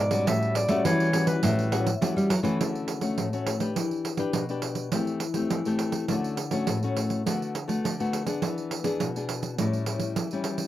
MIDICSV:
0, 0, Header, 1, 5, 480
1, 0, Start_track
1, 0, Key_signature, 2, "major"
1, 0, Tempo, 581959
1, 224, Time_signature, 4, 2, 24, 8
1, 8802, End_track
2, 0, Start_track
2, 0, Title_t, "Clarinet"
2, 0, Program_c, 0, 71
2, 0, Note_on_c, 0, 74, 88
2, 227, Note_on_c, 0, 76, 99
2, 239, Note_off_c, 0, 74, 0
2, 468, Note_on_c, 0, 74, 86
2, 480, Note_off_c, 0, 76, 0
2, 705, Note_off_c, 0, 74, 0
2, 712, Note_on_c, 0, 73, 89
2, 1042, Note_off_c, 0, 73, 0
2, 1053, Note_on_c, 0, 71, 68
2, 1623, Note_off_c, 0, 71, 0
2, 8802, End_track
3, 0, Start_track
3, 0, Title_t, "Nylon-string guitar"
3, 0, Program_c, 1, 24
3, 0, Note_on_c, 1, 47, 56
3, 97, Note_on_c, 1, 55, 62
3, 102, Note_on_c, 1, 61, 63
3, 102, Note_on_c, 1, 66, 71
3, 201, Note_off_c, 1, 47, 0
3, 233, Note_on_c, 1, 45, 55
3, 542, Note_off_c, 1, 55, 0
3, 543, Note_off_c, 1, 61, 0
3, 544, Note_off_c, 1, 66, 0
3, 576, Note_on_c, 1, 55, 65
3, 578, Note_on_c, 1, 61, 67
3, 584, Note_on_c, 1, 66, 70
3, 683, Note_off_c, 1, 45, 0
3, 705, Note_on_c, 1, 52, 57
3, 900, Note_off_c, 1, 55, 0
3, 902, Note_off_c, 1, 61, 0
3, 903, Note_off_c, 1, 66, 0
3, 933, Note_on_c, 1, 55, 49
3, 939, Note_on_c, 1, 61, 56
3, 939, Note_on_c, 1, 66, 60
3, 1159, Note_off_c, 1, 52, 0
3, 1178, Note_on_c, 1, 45, 56
3, 1379, Note_off_c, 1, 55, 0
3, 1380, Note_off_c, 1, 61, 0
3, 1382, Note_off_c, 1, 66, 0
3, 1418, Note_on_c, 1, 55, 58
3, 1423, Note_on_c, 1, 61, 52
3, 1425, Note_on_c, 1, 66, 63
3, 1561, Note_off_c, 1, 55, 0
3, 1562, Note_off_c, 1, 61, 0
3, 1564, Note_off_c, 1, 66, 0
3, 1635, Note_off_c, 1, 45, 0
3, 1664, Note_on_c, 1, 52, 52
3, 1664, Note_on_c, 1, 55, 58
3, 1668, Note_on_c, 1, 61, 53
3, 1671, Note_on_c, 1, 66, 59
3, 1887, Note_off_c, 1, 55, 0
3, 1889, Note_off_c, 1, 61, 0
3, 1891, Note_off_c, 1, 66, 0
3, 2002, Note_on_c, 1, 57, 62
3, 2007, Note_on_c, 1, 61, 66
3, 2011, Note_on_c, 1, 66, 65
3, 2118, Note_off_c, 1, 52, 0
3, 2142, Note_on_c, 1, 50, 58
3, 2454, Note_off_c, 1, 57, 0
3, 2454, Note_off_c, 1, 61, 0
3, 2457, Note_off_c, 1, 66, 0
3, 2490, Note_on_c, 1, 57, 48
3, 2493, Note_on_c, 1, 61, 52
3, 2495, Note_on_c, 1, 66, 54
3, 2597, Note_off_c, 1, 50, 0
3, 2623, Note_on_c, 1, 45, 54
3, 2697, Note_off_c, 1, 57, 0
3, 2698, Note_off_c, 1, 61, 0
3, 2700, Note_off_c, 1, 66, 0
3, 2745, Note_on_c, 1, 57, 58
3, 2751, Note_on_c, 1, 61, 56
3, 2755, Note_on_c, 1, 66, 54
3, 2944, Note_off_c, 1, 57, 0
3, 2948, Note_off_c, 1, 61, 0
3, 2948, Note_off_c, 1, 66, 0
3, 2969, Note_on_c, 1, 62, 58
3, 2973, Note_on_c, 1, 67, 56
3, 2979, Note_on_c, 1, 71, 59
3, 3078, Note_off_c, 1, 45, 0
3, 3104, Note_on_c, 1, 52, 65
3, 3417, Note_off_c, 1, 62, 0
3, 3420, Note_off_c, 1, 67, 0
3, 3421, Note_off_c, 1, 71, 0
3, 3452, Note_on_c, 1, 62, 61
3, 3457, Note_on_c, 1, 67, 63
3, 3459, Note_on_c, 1, 71, 71
3, 3559, Note_off_c, 1, 52, 0
3, 3582, Note_on_c, 1, 47, 54
3, 3659, Note_off_c, 1, 62, 0
3, 3660, Note_off_c, 1, 67, 0
3, 3662, Note_off_c, 1, 71, 0
3, 3710, Note_on_c, 1, 62, 52
3, 3713, Note_on_c, 1, 67, 51
3, 3716, Note_on_c, 1, 71, 47
3, 4028, Note_off_c, 1, 62, 0
3, 4028, Note_off_c, 1, 67, 0
3, 4031, Note_off_c, 1, 71, 0
3, 4038, Note_off_c, 1, 47, 0
3, 4065, Note_on_c, 1, 52, 66
3, 4066, Note_on_c, 1, 57, 49
3, 4071, Note_on_c, 1, 60, 46
3, 4071, Note_on_c, 1, 67, 56
3, 4289, Note_off_c, 1, 57, 0
3, 4291, Note_off_c, 1, 60, 0
3, 4292, Note_off_c, 1, 67, 0
3, 4412, Note_on_c, 1, 57, 55
3, 4415, Note_on_c, 1, 60, 53
3, 4418, Note_on_c, 1, 67, 60
3, 4520, Note_off_c, 1, 52, 0
3, 4543, Note_on_c, 1, 52, 61
3, 4619, Note_off_c, 1, 57, 0
3, 4621, Note_off_c, 1, 60, 0
3, 4622, Note_off_c, 1, 67, 0
3, 4669, Note_on_c, 1, 57, 64
3, 4673, Note_on_c, 1, 67, 63
3, 4674, Note_on_c, 1, 60, 50
3, 4989, Note_off_c, 1, 57, 0
3, 4989, Note_off_c, 1, 60, 0
3, 4990, Note_off_c, 1, 67, 0
3, 4999, Note_off_c, 1, 52, 0
3, 5028, Note_on_c, 1, 50, 69
3, 5028, Note_on_c, 1, 57, 51
3, 5032, Note_on_c, 1, 61, 48
3, 5036, Note_on_c, 1, 66, 56
3, 5250, Note_off_c, 1, 57, 0
3, 5253, Note_off_c, 1, 61, 0
3, 5254, Note_off_c, 1, 66, 0
3, 5376, Note_on_c, 1, 57, 60
3, 5382, Note_on_c, 1, 61, 62
3, 5384, Note_on_c, 1, 66, 68
3, 5483, Note_off_c, 1, 50, 0
3, 5513, Note_on_c, 1, 45, 59
3, 5582, Note_off_c, 1, 57, 0
3, 5584, Note_off_c, 1, 61, 0
3, 5586, Note_off_c, 1, 66, 0
3, 5635, Note_on_c, 1, 57, 51
3, 5642, Note_on_c, 1, 61, 54
3, 5643, Note_on_c, 1, 66, 58
3, 5952, Note_off_c, 1, 57, 0
3, 5954, Note_off_c, 1, 61, 0
3, 5956, Note_off_c, 1, 66, 0
3, 5965, Note_off_c, 1, 45, 0
3, 5988, Note_on_c, 1, 50, 58
3, 5988, Note_on_c, 1, 57, 51
3, 5993, Note_on_c, 1, 59, 47
3, 5995, Note_on_c, 1, 66, 61
3, 6212, Note_off_c, 1, 57, 0
3, 6213, Note_off_c, 1, 59, 0
3, 6215, Note_off_c, 1, 66, 0
3, 6331, Note_on_c, 1, 57, 58
3, 6335, Note_on_c, 1, 59, 55
3, 6337, Note_on_c, 1, 66, 60
3, 6444, Note_off_c, 1, 50, 0
3, 6469, Note_on_c, 1, 50, 65
3, 6541, Note_off_c, 1, 57, 0
3, 6541, Note_off_c, 1, 59, 0
3, 6543, Note_off_c, 1, 66, 0
3, 6596, Note_on_c, 1, 57, 61
3, 6601, Note_on_c, 1, 59, 57
3, 6602, Note_on_c, 1, 66, 68
3, 6793, Note_off_c, 1, 57, 0
3, 6794, Note_off_c, 1, 59, 0
3, 6796, Note_off_c, 1, 66, 0
3, 6816, Note_on_c, 1, 59, 55
3, 6820, Note_on_c, 1, 62, 58
3, 6823, Note_on_c, 1, 68, 64
3, 6924, Note_off_c, 1, 50, 0
3, 6947, Note_on_c, 1, 52, 66
3, 7263, Note_off_c, 1, 59, 0
3, 7265, Note_off_c, 1, 62, 0
3, 7266, Note_off_c, 1, 68, 0
3, 7291, Note_on_c, 1, 59, 63
3, 7296, Note_on_c, 1, 62, 60
3, 7299, Note_on_c, 1, 68, 65
3, 7403, Note_off_c, 1, 52, 0
3, 7437, Note_on_c, 1, 47, 58
3, 7500, Note_off_c, 1, 59, 0
3, 7503, Note_off_c, 1, 62, 0
3, 7503, Note_off_c, 1, 68, 0
3, 7559, Note_on_c, 1, 59, 52
3, 7562, Note_on_c, 1, 62, 51
3, 7566, Note_on_c, 1, 68, 58
3, 7874, Note_off_c, 1, 59, 0
3, 7876, Note_off_c, 1, 62, 0
3, 7878, Note_off_c, 1, 68, 0
3, 7888, Note_off_c, 1, 47, 0
3, 7913, Note_on_c, 1, 45, 64
3, 7917, Note_on_c, 1, 55, 51
3, 7921, Note_on_c, 1, 64, 55
3, 7923, Note_on_c, 1, 61, 53
3, 8113, Note_off_c, 1, 55, 0
3, 8114, Note_off_c, 1, 61, 0
3, 8116, Note_off_c, 1, 64, 0
3, 8149, Note_on_c, 1, 55, 48
3, 8153, Note_on_c, 1, 61, 48
3, 8154, Note_on_c, 1, 64, 53
3, 8368, Note_off_c, 1, 45, 0
3, 8392, Note_on_c, 1, 52, 57
3, 8470, Note_off_c, 1, 55, 0
3, 8471, Note_off_c, 1, 61, 0
3, 8472, Note_off_c, 1, 64, 0
3, 8517, Note_on_c, 1, 55, 54
3, 8523, Note_on_c, 1, 61, 55
3, 8527, Note_on_c, 1, 64, 57
3, 8802, Note_off_c, 1, 52, 0
3, 8802, Note_off_c, 1, 55, 0
3, 8802, Note_off_c, 1, 61, 0
3, 8802, Note_off_c, 1, 64, 0
3, 8802, End_track
4, 0, Start_track
4, 0, Title_t, "Nylon-string guitar"
4, 0, Program_c, 2, 24
4, 0, Note_on_c, 2, 44, 84
4, 224, Note_off_c, 2, 44, 0
4, 224, Note_on_c, 2, 45, 91
4, 529, Note_off_c, 2, 45, 0
4, 568, Note_on_c, 2, 57, 93
4, 676, Note_off_c, 2, 57, 0
4, 700, Note_on_c, 2, 52, 81
4, 1108, Note_off_c, 2, 52, 0
4, 1182, Note_on_c, 2, 45, 95
4, 1589, Note_off_c, 2, 45, 0
4, 1661, Note_on_c, 2, 57, 76
4, 1769, Note_off_c, 2, 57, 0
4, 1787, Note_on_c, 2, 55, 85
4, 1892, Note_off_c, 2, 55, 0
4, 1895, Note_on_c, 2, 54, 79
4, 2004, Note_off_c, 2, 54, 0
4, 2007, Note_on_c, 2, 52, 83
4, 2121, Note_off_c, 2, 52, 0
4, 8802, End_track
5, 0, Start_track
5, 0, Title_t, "Pandeiro"
5, 89, Note_on_c, 9, 54, 55
5, 172, Note_off_c, 9, 54, 0
5, 225, Note_on_c, 9, 54, 87
5, 307, Note_off_c, 9, 54, 0
5, 350, Note_on_c, 9, 54, 31
5, 432, Note_off_c, 9, 54, 0
5, 455, Note_on_c, 9, 54, 68
5, 538, Note_off_c, 9, 54, 0
5, 565, Note_on_c, 9, 54, 52
5, 647, Note_off_c, 9, 54, 0
5, 701, Note_on_c, 9, 54, 74
5, 783, Note_off_c, 9, 54, 0
5, 827, Note_on_c, 9, 54, 35
5, 909, Note_off_c, 9, 54, 0
5, 935, Note_on_c, 9, 54, 68
5, 1017, Note_off_c, 9, 54, 0
5, 1048, Note_on_c, 9, 54, 61
5, 1130, Note_off_c, 9, 54, 0
5, 1178, Note_on_c, 9, 54, 79
5, 1260, Note_off_c, 9, 54, 0
5, 1309, Note_on_c, 9, 54, 33
5, 1391, Note_off_c, 9, 54, 0
5, 1420, Note_on_c, 9, 54, 70
5, 1502, Note_off_c, 9, 54, 0
5, 1539, Note_on_c, 9, 54, 59
5, 1621, Note_off_c, 9, 54, 0
5, 1666, Note_on_c, 9, 54, 75
5, 1748, Note_off_c, 9, 54, 0
5, 1796, Note_on_c, 9, 54, 36
5, 1878, Note_off_c, 9, 54, 0
5, 1899, Note_on_c, 9, 54, 71
5, 1982, Note_off_c, 9, 54, 0
5, 2017, Note_on_c, 9, 54, 51
5, 2099, Note_off_c, 9, 54, 0
5, 2150, Note_on_c, 9, 54, 76
5, 2233, Note_off_c, 9, 54, 0
5, 2271, Note_on_c, 9, 54, 28
5, 2353, Note_off_c, 9, 54, 0
5, 2374, Note_on_c, 9, 54, 62
5, 2456, Note_off_c, 9, 54, 0
5, 2485, Note_on_c, 9, 54, 47
5, 2568, Note_off_c, 9, 54, 0
5, 2620, Note_on_c, 9, 54, 63
5, 2703, Note_off_c, 9, 54, 0
5, 2747, Note_on_c, 9, 54, 30
5, 2829, Note_off_c, 9, 54, 0
5, 2858, Note_on_c, 9, 54, 62
5, 2941, Note_off_c, 9, 54, 0
5, 2972, Note_on_c, 9, 54, 51
5, 3054, Note_off_c, 9, 54, 0
5, 3103, Note_on_c, 9, 54, 71
5, 3185, Note_off_c, 9, 54, 0
5, 3227, Note_on_c, 9, 54, 27
5, 3309, Note_off_c, 9, 54, 0
5, 3339, Note_on_c, 9, 54, 57
5, 3421, Note_off_c, 9, 54, 0
5, 3442, Note_on_c, 9, 54, 51
5, 3525, Note_off_c, 9, 54, 0
5, 3574, Note_on_c, 9, 54, 73
5, 3656, Note_off_c, 9, 54, 0
5, 3702, Note_on_c, 9, 54, 29
5, 3785, Note_off_c, 9, 54, 0
5, 3810, Note_on_c, 9, 54, 63
5, 3893, Note_off_c, 9, 54, 0
5, 3919, Note_on_c, 9, 54, 45
5, 4002, Note_off_c, 9, 54, 0
5, 4056, Note_on_c, 9, 54, 75
5, 4138, Note_off_c, 9, 54, 0
5, 4182, Note_on_c, 9, 54, 27
5, 4264, Note_off_c, 9, 54, 0
5, 4290, Note_on_c, 9, 54, 63
5, 4372, Note_off_c, 9, 54, 0
5, 4404, Note_on_c, 9, 54, 49
5, 4487, Note_off_c, 9, 54, 0
5, 4540, Note_on_c, 9, 54, 67
5, 4622, Note_off_c, 9, 54, 0
5, 4662, Note_on_c, 9, 54, 29
5, 4745, Note_off_c, 9, 54, 0
5, 4773, Note_on_c, 9, 54, 58
5, 4856, Note_off_c, 9, 54, 0
5, 4885, Note_on_c, 9, 54, 52
5, 4967, Note_off_c, 9, 54, 0
5, 5018, Note_on_c, 9, 54, 70
5, 5100, Note_off_c, 9, 54, 0
5, 5149, Note_on_c, 9, 54, 28
5, 5231, Note_off_c, 9, 54, 0
5, 5256, Note_on_c, 9, 54, 60
5, 5339, Note_off_c, 9, 54, 0
5, 5370, Note_on_c, 9, 54, 51
5, 5452, Note_off_c, 9, 54, 0
5, 5501, Note_on_c, 9, 54, 70
5, 5583, Note_off_c, 9, 54, 0
5, 5630, Note_on_c, 9, 54, 31
5, 5713, Note_off_c, 9, 54, 0
5, 5745, Note_on_c, 9, 54, 60
5, 5828, Note_off_c, 9, 54, 0
5, 5856, Note_on_c, 9, 54, 43
5, 5939, Note_off_c, 9, 54, 0
5, 5993, Note_on_c, 9, 54, 78
5, 6075, Note_off_c, 9, 54, 0
5, 6121, Note_on_c, 9, 54, 30
5, 6204, Note_off_c, 9, 54, 0
5, 6227, Note_on_c, 9, 54, 61
5, 6310, Note_off_c, 9, 54, 0
5, 6343, Note_on_c, 9, 54, 46
5, 6425, Note_off_c, 9, 54, 0
5, 6476, Note_on_c, 9, 54, 69
5, 6558, Note_off_c, 9, 54, 0
5, 6601, Note_on_c, 9, 54, 31
5, 6683, Note_off_c, 9, 54, 0
5, 6708, Note_on_c, 9, 54, 62
5, 6791, Note_off_c, 9, 54, 0
5, 6817, Note_on_c, 9, 54, 52
5, 6900, Note_off_c, 9, 54, 0
5, 6945, Note_on_c, 9, 54, 70
5, 7028, Note_off_c, 9, 54, 0
5, 7074, Note_on_c, 9, 54, 29
5, 7156, Note_off_c, 9, 54, 0
5, 7185, Note_on_c, 9, 54, 59
5, 7267, Note_off_c, 9, 54, 0
5, 7293, Note_on_c, 9, 54, 53
5, 7375, Note_off_c, 9, 54, 0
5, 7424, Note_on_c, 9, 54, 74
5, 7507, Note_off_c, 9, 54, 0
5, 7555, Note_on_c, 9, 54, 33
5, 7637, Note_off_c, 9, 54, 0
5, 7660, Note_on_c, 9, 54, 64
5, 7743, Note_off_c, 9, 54, 0
5, 7775, Note_on_c, 9, 54, 45
5, 7858, Note_off_c, 9, 54, 0
5, 7905, Note_on_c, 9, 54, 76
5, 7988, Note_off_c, 9, 54, 0
5, 8028, Note_on_c, 9, 54, 27
5, 8110, Note_off_c, 9, 54, 0
5, 8135, Note_on_c, 9, 54, 68
5, 8218, Note_off_c, 9, 54, 0
5, 8244, Note_on_c, 9, 54, 48
5, 8327, Note_off_c, 9, 54, 0
5, 8381, Note_on_c, 9, 54, 69
5, 8464, Note_off_c, 9, 54, 0
5, 8502, Note_on_c, 9, 54, 32
5, 8584, Note_off_c, 9, 54, 0
5, 8609, Note_on_c, 9, 54, 64
5, 8692, Note_off_c, 9, 54, 0
5, 8726, Note_on_c, 9, 54, 52
5, 8802, Note_off_c, 9, 54, 0
5, 8802, End_track
0, 0, End_of_file